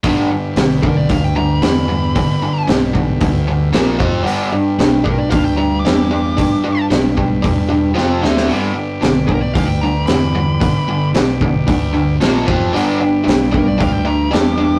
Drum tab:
HH |o---o---o---o---|o---o---o---o---|o---o---o---o---|o---o---o-------|
SD |----o-------o---|----o-------o---|----o-------o---|----o-------o-oo|
BD |o-----o-o-------|o-----o-o-----o-|------o-o-------|o-----o-o-------|

HH |o---o---o---o---|o---o---o---o---|o---o---o---o---|
SD |----o-------o---|----o-------o---|----o-------o---|
BD |------o-o-------|o-----o-o-----o-|------o-o-------|